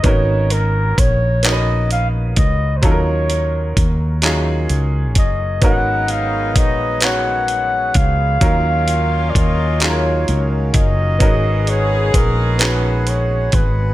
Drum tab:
HH |xxxxxx|xxxxxx|xxxxxx|xxxxxx|
CP |---x--|---x--|---x--|---x--|
BD |o-o--o|o-o--o|o-o--o|o-o--o|

HH |xxxxxx|
CP |---x--|
BD |o-o--o|